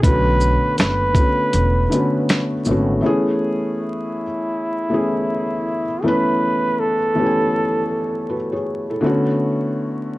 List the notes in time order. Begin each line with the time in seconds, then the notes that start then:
0.02 B1 D3 A3 B3 C#4 B4, kick, closed hi-hat
0.07 F#4
0.41 shaker
0.78 F#1 B4, finger snap, snare, closed hi-hat
1.14 D3 A3 B3, kick, closed hi-hat, shaker
1.18 C#4 F#4
1.53 E1, closed hi-hat
1.90 D3 A3 B3, closed hi-hat, shaker
1.94 C#4 F#4
2.29 finger snap, snare, closed hi-hat
2.65 G#1 D3 A3 B3, shaker
2.69 C#4 F#4
3.01 E3 A3 B3 C#4
3.06 G#4
3.80 E4
4.89 E3 A3 B3 C#4
4.94 G#4
6.02 E3 A3 B3 C#4 B4
6.08 B4
6.80 A4
7.14 E3 A3 B3 C#4
7.19 G4
7.26 G#5
8.30 F#4 B4
8.52 G#4 C#5
8.90 E4 A4
9.01 D3 A3 B3
9.05 C#4 F#4